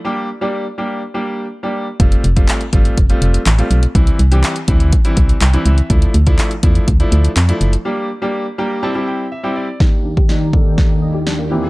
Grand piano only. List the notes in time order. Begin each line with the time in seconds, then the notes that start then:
0.05 G3 A#3 D4 G4
0.41 G3 A#3 D4 G4
0.78 G3 A#3 D4 G4
1.14 G3 A#3 D4 G4
1.63 G3 A#3 D4 G4
2.00 G3 A3 C4 F4
2.36 G3 A3 C4 F4
2.73 G3 A3 C4 F4
3.10 G3 A3 C4 F4
3.58 G3 A3 C4 F4
3.95 E3 G3 C4 E4
4.31 E3 G3 C4 G4
4.68 E3 G3 C4 E4
5.05 E3 G3 C4 E4
5.41 G5
5.53 E3 G3 C4 E4
5.66 E5
5.90 F3 A3 D4 E4
6.26 F3 A3 D4 E4
6.63 F3 A3 D4 E4
7.00 F3 A3 D4 E4
7.48 F3 A3 D4 E4
7.85 G3 A#3 D4 G4
8.22 G3 A#3 D4 G4
8.58 G3 A#3 D4 G4 A#5
8.83 G3 C4 E4 G4 A5
8.95 G3 C4 E4 G4
9.07 G5
9.32 E5
9.43 G3 C4 E4 G4
9.56 D5
9.80 A#3 D4 D#4 G4
10.29 A#3 D4 D#4 G4
10.53 A#3 D4 D#4 A4
11.51 E3 A#3 C4 E4 G4